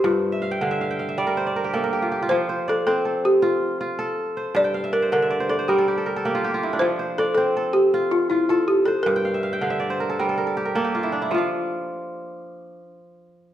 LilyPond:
<<
  \new Staff \with { instrumentName = "Kora" } { \time 12/8 \key g \dorian \tempo 4. = 106 << { c''8 r1 r4. | r8 c''8 d''8 c''8 a'4. r8 f'4. c''8~ | c''8 r1 r4. | r8 c''8 d''8 c''8 a'4. r8 f'4. c''8~ |
c''8 r1 r4. | <f f' f''>1. | } \\ { r8. e''16 f''16 g''16 f''16 e''16 f''16 g''16 f''16 e''16 d''16 bes'16 c''16 d''16 bes'16 g'16 a'16 bes'16 g'16 f'16 g'16 f'16~ | f'16 r1 r4. r16 | a''16 g''16 f''16 e''16 d''16 c''16 d''16 e''16 d''16 c''16 d''16 c''16 bes'16 a'16 g'16 a'16 bes'16 a'16 g'16 f'16 g'16 f'16 e'16 d'16~ | d'16 r1 r4. r16 |
r16 g''16 f''16 e''16 f''16 g''16 f''16 e''16 d''16 c''16 bes'16 a'16 bes'16 a'16 bes'16 a'16 g'16 bes'16 a'16 g'16 f'16 e'16 d'16 e'16~ | e'16 r1 r4. r16 | } >> }
  \new Staff \with { instrumentName = "Kora" } { \clef bass \time 12/8 \key g \dorian g,4 r8 d4 r8 g4 r8 bes4 r8 | f4 r8 c'4 r8 f'4 r8 a'4 r8 | g,4 r8 d4 r8 g4 r8 bes4 r8 | f4 r8 c'4 r8 f'4 r8 a'4 r8 |
g,4 r8 d4 r8 g4 r8 bes4 r8 | r1. | }
  \new Staff \with { instrumentName = "Balafon" } { \time 12/8 \key g \dorian f'2 r1 | c''4 a'8 a'4 g'8 f'4 r2 | d''4 bes'8 bes'4 a'8 g'4 r2 | c''4 a'8 a'4 g'4 f'8 e'8 f'8 g'8 a'8 |
bes'1~ bes'4 r4 | f'1. | }
>>